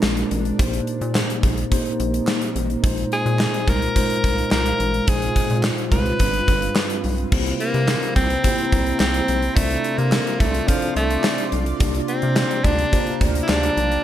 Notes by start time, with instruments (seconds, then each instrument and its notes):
Already playing: tine electric piano A#2 G#3 C4 D4 F4 A#4, ambient pad G#3 A#3 D4
0.03 analog synth bass A#1, snare, clap, tambourine
0.17 closed hi-hat
0.31 analog synth bass A1, closed hi-hat
0.45 closed hi-hat
0.58 analog synth bass A#1, tine electric piano A#2 A#3 D#4 G4 C5, ambient pad C4 D#4, kick, closed hi-hat
0.73 closed hi-hat
0.87 closed hi-hat
1.01 analog synth bass A#2, closed hi-hat
1.15 snare, clap, tambourine
1.30 closed hi-hat
1.43 analog synth bass A#1, kick, closed hi-hat
1.58 closed hi-hat
1.71 tine electric piano A#3 D#4 G4 C5, kick, closed hi-hat
1.86 closed hi-hat
2.00 analog synth bass A#1, closed hi-hat
2.14 closed hi-hat
2.27 snare, clap, tambourine
2.41 closed hi-hat
2.56 analog synth bass A1, closed hi-hat
2.70 closed hi-hat
2.82 analog synth bass A#1, tine electric piano A#2 G#3 D#4 F4 C5, ambient pad G#3 F4, kick, closed hi-hat
2.97 closed hi-hat
3.12 alto saxophone G#4, closed hi-hat
3.26 analog synth bass A#2, closed hi-hat
3.39 snare, clap, tambourine
3.54 closed hi-hat
3.68 analog synth bass C2, alto saxophone A#4, kick, closed hi-hat
3.82 closed hi-hat
3.95 tine electric piano G#3 D#4 F4 C5, kick, closed hi-hat
4.10 closed hi-hat
4.24 analog synth bass C2, kick, closed hi-hat
4.38 closed hi-hat
4.51 analog synth bass C2, alto saxophone A#4, snare, clap, tambourine
4.66 closed hi-hat
4.80 analog synth bass A1, closed hi-hat
4.94 closed hi-hat
5.07 analog synth bass A#1, tine electric piano A#2 G#3 D#4 F4 C5, ambient pad C4, alto saxophone G#4, kick, closed hi-hat
5.22 analog polysynth C3 G#3 F4, closed hi-hat
5.36 kick, closed hi-hat
5.50 analog synth bass A#2, analog polysynth C3 G#3 F4, closed hi-hat
5.63 snare, clap, tambourine
5.78 closed hi-hat
5.92 analog synth bass C2, analog polysynth C3 G#3 F4, alto saxophone B4, kick, closed hi-hat
6.06 closed hi-hat
6.19 analog synth bass G1, tine electric piano G2 G3 D4 F4 B4, ambient pad G3 B4, kick, closed hi-hat
6.34 closed hi-hat
6.48 analog synth bass G1, kick, closed hi-hat
6.62 closed hi-hat
6.76 snare, clap, tambourine
6.90 closed hi-hat
7.04 analog synth bass B1, open hi-hat
7.18 closed hi-hat
7.32 analog synth bass C2, tine electric piano C3 A#3 C4 E4 G4 C5, ambient pad E4 C5 A#5, kick, crash
7.46 closed hi-hat
7.60 alto saxophone A#3, closed hi-hat
7.74 analog synth bass C3, closed hi-hat
7.88 snare, clap, tambourine
8.03 closed hi-hat
8.16 analog synth bass C2, alto saxophone C4, kick, closed hi-hat
8.30 closed hi-hat
8.43 tine electric piano A#3 C4 E4 G4 C5, kick, closed hi-hat
8.58 closed hi-hat
8.72 analog synth bass C2, kick, closed hi-hat
8.86 closed hi-hat
9.00 analog synth bass C2, alto saxophone C4, snare, clap, tambourine
9.14 closed hi-hat
9.28 analog synth bass B1, closed hi-hat
9.42 closed hi-hat
9.55 analog synth bass C2, tine electric piano C3 C4 D4 F4 A4 D5, alto saxophone A3, ambient pad F4 D5 C6, kick, closed hi-hat
9.70 closed hi-hat
9.84 closed hi-hat
9.98 analog synth bass C3, alto saxophone A#3, closed hi-hat
10.12 snare, clap, tambourine
10.27 closed hi-hat
10.40 analog synth bass C2, alto saxophone A3, kick, closed hi-hat
10.54 closed hi-hat
10.67 alto saxophone F3, tine electric piano C4 D4 E4 A4 D5, kick, closed hi-hat
10.74 tine electric piano F4
10.82 closed hi-hat
10.96 analog synth bass C2, alto saxophone A3, closed hi-hat
11.10 closed hi-hat
11.24 snare, clap, tambourine
11.38 closed hi-hat
11.52 analog synth bass B1, closed hi-hat
11.66 closed hi-hat
11.79 analog synth bass C2, tine electric piano C3 A#3 D4 F4 G4 D5, ambient pad G4 F5 A#5, kick, closed hi-hat
11.94 closed hi-hat
12.08 alto saxophone C4, closed hi-hat
12.22 analog synth bass C3, closed hi-hat
12.36 snare, clap, tambourine
12.51 closed hi-hat
12.64 analog synth bass D2, alto saxophone D4, kick, closed hi-hat
12.79 closed hi-hat
12.92 tine electric piano A#3 D4 F4 G4 C5, kick, closed hi-hat
12.99 tine electric piano D5
13.07 closed hi-hat
13.21 analog synth bass D2, kick, closed hi-hat
13.35 closed hi-hat
13.43 alto saxophone E4
13.48 analog synth bass D2, alto saxophone D4, snare, clap, tambourine
13.63 closed hi-hat
13.77 analog synth bass B1, closed hi-hat
13.92 closed hi-hat